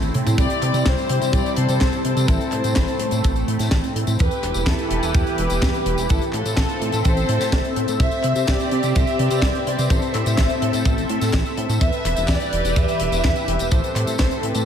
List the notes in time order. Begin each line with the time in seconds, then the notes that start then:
Already playing: A1 A3 C4 E4
0.02 closed hi-hat, high tom, tambourine
0.14 A2, closed hi-hat, mid tom
0.26 A2, closed hi-hat, mid tom, tambourine
0.38 C2 G3 G4 D5, kick, closed hi-hat, tambourine
0.50 closed hi-hat, tambourine
0.62 C3, clap, closed hi-hat
0.74 C3, closed hi-hat, tambourine
0.86 C2 G4 C5, kick, snare, clap, closed hi-hat
0.97 closed hi-hat, tambourine
1.09 C3, closed hi-hat
1.22 C3, closed hi-hat, tambourine
1.33 C2 G4 D5, kick, closed hi-hat, tambourine
1.46 closed hi-hat, tambourine
1.56 C3 A4 C5, closed hi-hat
1.69 C3, closed hi-hat, tambourine
1.81 C2, kick, snare, clap, closed hi-hat, tambourine
1.92 closed hi-hat, tambourine
2.04 C3 A4 C5, closed hi-hat
2.17 C3, closed hi-hat, tambourine
2.28 A1 A3 E4 A4, kick, closed hi-hat
2.41 closed hi-hat, tambourine
2.52 A2 A4 C5, clap, closed hi-hat
2.64 A2, closed hi-hat, tambourine
2.76 A1, kick, snare, clap, closed hi-hat
2.88 closed hi-hat, tambourine
3.00 A2, closed hi-hat
3.11 A2, closed hi-hat, tambourine
3.24 A1, kick, closed hi-hat, tambourine
3.36 closed hi-hat, tambourine
3.48 A2, closed hi-hat
3.59 A2, snare, closed hi-hat, tambourine
3.71 A1, kick, snare, clap, closed hi-hat, tambourine
3.84 closed hi-hat, tambourine
3.95 A2, closed hi-hat
4.07 A2, closed hi-hat, tambourine
4.19 E2 E3 E4 G4 B4, kick, closed hi-hat, tambourine
4.31 closed hi-hat, tambourine
4.43 E1, clap, closed hi-hat
4.54 E1, closed hi-hat, tambourine
4.66 E2 E4 A4, kick, snare, clap, closed hi-hat
4.78 closed hi-hat, tambourine
4.91 E1, closed hi-hat
5.03 E1, closed hi-hat, tambourine
5.14 E2 E4 G4, kick, closed hi-hat
5.26 closed hi-hat, tambourine
5.38 E1 G4 B4, closed hi-hat
5.50 E1, closed hi-hat, tambourine
5.62 E2, kick, snare, clap, closed hi-hat
5.74 closed hi-hat, tambourine
5.86 E1, closed hi-hat
5.98 E1, closed hi-hat, tambourine
6.09 A1 C4 E4 A4 E5, kick, closed hi-hat, tambourine
6.21 closed hi-hat, tambourine
6.32 A2 F4 A4, clap, closed hi-hat
6.46 A2, closed hi-hat, tambourine
6.57 A1, kick, snare, clap, closed hi-hat
6.69 closed hi-hat, tambourine
6.81 A2, closed hi-hat
6.92 A2, closed hi-hat, tambourine
7.05 A1 A4 C5, kick, closed hi-hat, tambourine
7.17 closed hi-hat, tambourine
7.29 A2, closed hi-hat
7.40 A2, snare, closed hi-hat, tambourine
7.52 A1, kick, snare, clap, closed hi-hat, tambourine
7.65 closed hi-hat, tambourine
7.76 A2, closed hi-hat
7.88 A2, closed hi-hat, tambourine
8.00 C2 C4 G4 C5 E5, kick, closed hi-hat, tambourine
8.11 closed hi-hat, tambourine
8.23 C3, clap, closed hi-hat
8.36 C3, closed hi-hat, tambourine
8.47 C2 G4 D5, kick, snare, clap, closed hi-hat, tambourine
8.60 closed hi-hat, tambourine
8.71 C3, closed hi-hat
8.83 C3, closed hi-hat, tambourine
8.95 C2 C5 E5, kick, closed hi-hat, tambourine
9.07 closed hi-hat, tambourine
9.19 C3 B4 D5, closed hi-hat
9.31 C3, closed hi-hat, tambourine
9.42 C2, kick, snare, clap, closed hi-hat, tambourine
9.55 closed hi-hat, tambourine
9.67 C3 B4 D5, closed hi-hat
9.79 C3, closed hi-hat, tambourine
9.90 A1 A4 C5, kick, closed hi-hat, tambourine
10.02 closed hi-hat, tambourine
10.14 A2 C5 E5, clap, closed hi-hat
10.26 A2, closed hi-hat, tambourine
10.38 A1, kick, snare, clap, closed hi-hat, tambourine
10.50 closed hi-hat, tambourine
10.62 A2, closed hi-hat
10.73 A2, closed hi-hat, tambourine
10.85 A1, kick, closed hi-hat, tambourine
10.98 closed hi-hat, tambourine
11.09 A2, closed hi-hat
11.21 A2, snare, closed hi-hat, tambourine
11.33 A1, kick, snare, clap, closed hi-hat, tambourine
11.46 closed hi-hat, tambourine
11.57 A2, closed hi-hat
11.69 A2, closed hi-hat, tambourine
11.81 E2 E3 G4 B4 E5, kick, closed hi-hat, tambourine
11.92 closed hi-hat, tambourine
12.05 E1, clap, closed hi-hat
12.16 E1, closed hi-hat, tambourine
12.28 E2 B4 D5, kick, snare, clap, closed hi-hat, tambourine
12.40 closed hi-hat, tambourine
12.53 E1, closed hi-hat
12.64 E1, closed hi-hat, tambourine
12.76 E2 B4 E5, kick, closed hi-hat, tambourine
12.88 closed hi-hat, tambourine
13.00 E1, closed hi-hat
13.12 E1, closed hi-hat, tambourine
13.24 E2, kick, snare, clap, closed hi-hat, tambourine
13.36 closed hi-hat, tambourine
13.48 E1, closed hi-hat
13.59 E1, closed hi-hat, tambourine
13.71 A1 C4 A4 C5, kick, closed hi-hat, tambourine
13.84 closed hi-hat, tambourine
13.95 A2, clap, closed hi-hat
14.07 A2, closed hi-hat, tambourine
14.18 A1 A4 C5, kick, snare, clap, closed hi-hat, tambourine
14.31 closed hi-hat, tambourine
14.43 A2 G4 B4, closed hi-hat
14.55 A2, closed hi-hat, tambourine